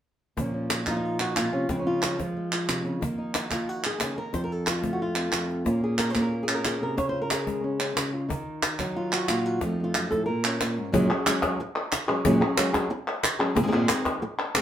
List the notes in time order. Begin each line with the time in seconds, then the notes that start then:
0.37 A#2 F3 A#3 C#4, cajon bass
0.54 C#4
0.70 C#4, cajon slap, clap
0.86 F3 D#4, cajon bass, cajon slap, clap
0.91 F4
0.97 D#4
1.05 F4
1.20 F#4, clap
1.36 A#2 F4, cajon slap, clap
1.45 D#4
1.52 C3 C#4, cajon slap
1.69 C#3 F3 G#3 C4, cajon bass, cajon slap
1.79 C#4
1.87 F4
2.02 F4, cajon slap, clap
2.19 F3 G#3, cajon bass
2.37 G#3
2.52 F4, clap
2.68 C3, cajon slap, clap
2.85 C#3, cajon slap
3.01 D#3 A#3 D#4, cajon bass
3.18 D#4
3.34 D#4, cajon slap, clap
3.44 F#4
3.50 A#3 F4, cajon bass, clap
3.69 F#4
3.84 G#4, clap
4.00 C#3, cajon slap, clap
4.17 D#3 A#4, cajon slap
4.33 F2 C5, cajon bass, cajon slap
4.44 A#4
4.52 A4
4.67 F4, cajon slap, clap
4.82 A3 C4, cajon bass
4.93 F#4
5.02 F4
5.16 C4, clap
5.32 F2, cajon slap, clap
5.50 cajon slap
5.65 A#2 A#3 C#4 F4 A#4, cajon bass, cajon slap
5.84 G#4
5.98 A#4, cajon slap, clap
6.10 C5
6.15 A#3 C#4, cajon bass, cajon slap, clap
6.21 A#4
6.43 G#4
6.48 C#4, clap
6.54 A#4
6.64 A#2 G#4, cajon slap, clap
6.81 C3 A#4
6.97 C#3 C#5, cajon bass, cajon slap
7.09 F4 C5
7.22 A#4
7.31 G#4, cajon slap, clap
7.46 G#3, cajon bass
7.64 C#4
7.80 C#4, clap
7.96 C#3, cajon slap, clap
8.13 F4
8.29 D#3 D#4, cajon bass
8.63 cajon slap, clap
8.79 F#3 D#4, cajon bass, clap
8.96 F4
9.12 F#4, clap
9.28 A#2 F4, cajon slap, clap
9.39 D#4
9.45 F#4, cajon slap
9.61 F2 F3 A3 D#4, cajon bass, cajon slap
9.80 A3 F4
9.94 F#2, cajon slap, clap
10.11 A2 A4, cajon bass, cajon slap
10.26 A#2 A#4
10.44 C#4, clap
10.61 A#2, cajon slap, clap
10.77 G#2, cajon slap
10.92 F#2 A#2 F#3 G#3 C#4 G#4, cajon bass
11.10 F#3 G#3 C#4 G#4
11.26 F#3 G#3 C#4 G#4, cajon slap, clap
11.43 F#3 G#3 C#4 G#4, cajon bass, cajon slap, clap
11.60 muted nylon-string guitar stroke
11.76 clap
11.92 cajon slap, clap
12.08 F#3 G#3 C#4 G#4, clap
12.25 F#2 A#2 F#3 G#3 C#4 G#4, cajon bass
12.40 F#3 G#3 C#4 G#4
12.57 F#3 G#3 C#4 G#4, cajon slap, clap
12.73 F#3 G#3 C#4 G#4, cajon bass, cajon slap
12.90 muted nylon-string guitar stroke
13.07 cajon slap
13.23 cajon slap, clap
13.39 F#3 G#3 C#4 G#4, clap
13.55 G#2 A#2 D#3 G#3 C4 G#4, cajon bass
13.63 A#2 D#3 G#3 C4 G#4
13.67 A#2 D#3 G#3 C4 G#4
13.72 G#2 A#2 D#3 G#3 C4 G#4, cajon slap
13.89 D#3 G#3 C4 G#4, cajon slap, clap
14.06 cajon bass, cajon slap, clap
14.22 muted nylon-string guitar stroke
14.39 cajon slap
14.55 D#3 G#3 C4 G#4, cajon slap, clap